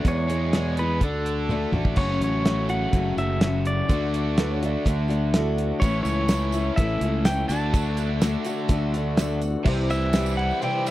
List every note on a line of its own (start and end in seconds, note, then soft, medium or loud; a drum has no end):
0.05 1.01 E2 loud
0.05 0.29 E2 medium
0.05 0.29 B2 medium
0.05 0.30 E3 medium
0.05 0.29 G#3 medium
0.05 0.29 B3 medium
0.05 0.28 G#4 medium
0.05 0.79 C#5 medium
0.05 kick loud
0.05 closed hi-hat medium
0.29 0.53 E3 soft
0.29 0.54 G#3 soft
0.29 0.53 B3 soft
0.29 0.53 G#4 medium
0.29 closed hi-hat medium
0.53 0.77 E2 medium
0.53 0.77 B2 medium
0.53 0.77 E3 medium
0.53 0.78 G#3 medium
0.53 0.77 B3 medium
0.53 0.76 G#4 medium
0.53 snare loud
0.53 closed hi-hat medium
0.77 1.02 E3 soft
0.77 1.02 G#3 soft
0.77 1.01 B3 soft
0.77 1.01 G#4 soft
0.77 1.03 B4 medium
0.77 closed hi-hat medium
1.01 1.65 D2 medium
1.01 1.49 D3 medium
1.01 1.50 A3 medium
1.01 1.50 D4 medium
1.01 1.70 A4 medium
1.01 kick medium
1.01 closed hi-hat medium
1.05 1.51 F#4 medium
1.25 1.97 D4 medium
1.25 closed hi-hat medium
1.49 1.73 D3 medium
1.49 1.74 A3 medium
1.49 1.73 D4 medium
1.49 1.71 F#4 medium
1.49 high tom medium
1.72 1.94 A1 medium
1.72 1.97 D3 medium
1.72 1.96 A3 soft
1.72 1.97 D4 soft
1.72 1.97 F#4 medium
1.72 mid tom medium
1.85 kick medium
1.96 2.18 F#1 medium
1.96 2.44 F#2 medium
1.96 2.45 C#3 medium
1.96 2.45 F#3 medium
1.96 2.47 A3 medium
1.96 2.46 C#4 medium
1.96 2.48 F#4 medium
1.96 2.22 C#5 medium
1.96 kick loud
1.96 crash loud
2.21 2.85 A1 medium
2.21 2.72 C#5 medium
2.21 closed hi-hat medium
2.45 2.69 F#3 medium
2.45 2.70 A3 medium
2.45 2.69 C#4 medium
2.45 2.68 F#4 medium
2.45 snare loud
2.45 closed hi-hat medium
2.69 2.93 F#3 soft
2.69 2.94 A3 soft
2.69 2.94 C#4 soft
2.69 2.93 F#4 soft
2.69 3.14 F#5 loud
2.69 closed hi-hat medium
2.93 3.14 F#1 medium
2.93 3.18 F#3 medium
2.93 3.18 A3 medium
2.93 3.18 C#4 medium
2.93 3.17 F#4 medium
2.93 kick medium
2.93 closed hi-hat medium
3.17 3.82 F#1 medium
3.17 3.42 F#3 soft
3.17 3.43 A3 soft
3.17 3.42 C#4 soft
3.17 3.42 F#4 medium
3.17 3.67 E5 medium
3.17 closed hi-hat medium
3.41 3.89 F#3 medium
3.41 3.90 A3 medium
3.41 snare loud
3.41 closed hi-hat medium
3.46 3.91 C#4 medium
3.46 3.91 F#4 medium
3.65 4.58 D5 medium
3.65 closed hi-hat medium
3.89 4.75 D2 loud
3.89 4.36 D3 medium
3.89 4.38 A3 medium
3.89 4.38 D4 medium
3.89 4.38 F#4 medium
3.89 kick loud
3.89 closed hi-hat medium
4.14 closed hi-hat medium
4.37 4.61 D3 medium
4.37 4.62 A3 medium
4.37 4.62 D4 medium
4.37 4.61 F#4 medium
4.37 4.50 B4 medium
4.37 snare loud
4.37 closed hi-hat medium
4.51 4.59 C#5 medium
4.60 4.86 D4 soft
4.60 4.86 F#4 medium
4.60 4.63 C#5 medium
4.60 closed hi-hat medium
4.65 4.85 A3 soft
4.65 5.33 D5 medium
4.85 5.71 D2 medium
4.85 5.09 D3 medium
4.85 5.09 A3 medium
4.85 5.08 D4 medium
4.85 5.07 F#4 medium
4.85 kick medium
4.85 closed hi-hat medium
5.08 5.34 A3 soft
5.08 5.33 D4 medium
5.08 5.33 F#4 medium
5.08 closed hi-hat medium
5.34 5.82 D3 medium
5.34 5.84 A3 medium
5.34 5.83 D4 medium
5.34 5.68 E4 medium
5.34 5.83 F#4 medium
5.34 5.70 A4 medium
5.34 snare loud
5.34 closed hi-hat loud
5.51 5.72 A3 medium
5.51 5.73 B3 medium
5.56 5.75 C4 medium
5.56 5.76 D4 medium
5.56 closed hi-hat medium
5.62 5.77 E4 medium
5.62 5.79 F4 medium
5.68 5.81 G4 medium
5.68 5.81 A4 medium
5.73 5.83 B4 medium
5.73 5.85 C5 medium
5.80 6.03 A1 loud
5.80 6.30 A2 medium
5.80 6.29 E3 medium
5.80 7.48 A3 medium
5.80 7.48 C#4 medium
5.80 7.48 E4 medium
5.80 7.48 A4 medium
5.80 6.02 C#5 medium
5.80 kick loud
5.80 closed hi-hat medium
5.80 tambourine medium
5.84 6.31 A3 medium
5.84 6.31 C#4 medium
5.84 6.32 E4 medium
6.03 6.70 C#2 medium
6.03 6.72 C#5 medium
6.03 closed hi-hat medium
6.03 tambourine medium
6.28 6.54 E3 medium
6.28 6.54 A3 medium
6.28 6.54 C#4 medium
6.28 snare loud
6.28 closed hi-hat medium
6.28 tambourine loud
6.33 6.53 E4 medium
6.52 6.78 C#4 soft
6.52 6.78 E4 medium
6.52 closed hi-hat medium
6.52 tambourine medium
6.57 6.79 A3 soft
6.76 6.99 A1 medium
6.76 7.02 E3 medium
6.76 7.03 A3 medium
6.76 7.26 E5 medium
6.76 kick medium
6.76 closed hi-hat medium
6.81 7.03 C#4 medium
6.81 7.02 E4 medium
7.01 7.44 C#2 medium
7.01 7.27 A3 soft
7.01 7.27 C#4 medium
7.01 7.26 E4 medium
7.01 closed hi-hat medium
7.25 7.50 E3 medium
7.25 7.51 A3 medium
7.25 7.48 G5 loud
7.25 snare loud
7.25 closed hi-hat loud
7.25 tambourine loud
7.29 7.51 C#4 medium
7.29 7.51 E4 medium
7.48 8.35 D2 loud
7.48 9.39 D3 medium
7.48 9.34 A3 medium
7.48 8.22 D4 medium
7.48 9.43 D4 medium
7.48 9.64 F#4 medium
7.48 8.22 F#4 medium
7.48 9.55 A4 medium
7.48 9.13 A5 loud
7.48 closed hi-hat medium
7.48 tambourine medium
7.52 8.20 D3 medium
7.52 8.21 A3 medium
7.74 kick loud
7.74 closed hi-hat medium
7.74 tambourine medium
7.97 closed hi-hat medium
7.97 tambourine medium
8.21 8.45 D3 medium
8.21 8.46 A3 medium
8.21 8.47 D4 medium
8.21 8.44 F#4 medium
8.21 snare loud
8.21 closed hi-hat loud
8.21 tambourine loud
8.45 8.69 D4 medium
8.45 8.70 F#4 medium
8.45 closed hi-hat medium
8.45 tambourine medium
8.49 8.68 A3 medium
8.68 9.55 D2 medium
8.68 8.93 D3 medium
8.68 8.93 A3 medium
8.68 8.94 D4 medium
8.68 8.92 F#4 medium
8.68 kick medium
8.68 closed hi-hat loud
8.68 tambourine soft
8.93 9.18 A3 soft
8.93 9.19 D4 medium
8.93 9.18 F#4 medium
8.93 closed hi-hat medium
8.93 tambourine soft
9.17 9.66 D3 medium
9.17 9.67 A3 medium
9.17 9.67 D4 medium
9.17 snare loud
9.17 closed hi-hat loud
9.17 tambourine loud
9.21 9.68 F#4 medium
9.36 9.56 A3 medium
9.36 9.58 B3 medium
9.42 9.59 C4 medium
9.42 9.61 D4 medium
9.42 closed hi-hat medium
9.42 tambourine medium
9.48 9.62 E4 medium
9.48 9.64 F4 medium
9.53 9.65 G4 medium
9.53 9.67 A4 medium
9.58 9.68 B4 medium
9.58 9.67 C5 medium
9.63 10.51 C2 loud
9.63 9.90 C3 medium
9.63 10.91 C4 medium
9.63 10.05 G4 medium
9.63 10.05 C5 medium
9.63 9.71 D5 medium
9.63 10.05 E5 loud
9.63 kick loud
9.63 crash loud
9.67 9.90 E3 medium
9.67 9.91 G3 medium
9.67 9.91 C4 loud
9.67 10.91 E4 medium
9.67 9.90 E4 medium
9.67 10.91 G4 medium
9.67 10.91 C5 medium
9.89 10.91 E3 medium
9.89 10.14 E4 medium
9.89 10.37 E5 loud
9.89 ride medium
9.89 tambourine medium
9.93 10.15 G3 soft
9.93 10.15 C4 soft
10.13 10.62 E3 medium
10.13 10.61 G3 medium
10.13 10.54 G4 medium
10.13 10.54 C5 medium
10.13 10.54 E5 medium
10.13 snare loud
10.13 ride medium
10.13 tambourine loud
10.17 10.62 C4 medium
10.17 10.64 E4 medium
10.26 tambourine medium
10.36 10.91 E4 medium
10.36 10.62 F#5 medium
10.36 ride medium
10.51 tambourine soft
10.62 10.91 C3 medium
10.62 10.91 E3 medium
10.62 10.91 G3 medium
10.62 10.91 C4 medium
10.62 10.91 E4 medium
10.62 10.91 G4 medium
10.62 10.91 C5 medium
10.62 10.91 E5 medium
10.62 10.88 G5 loud
10.62 ride medium
10.86 10.91 G3 medium
10.86 ride medium
10.86 tambourine medium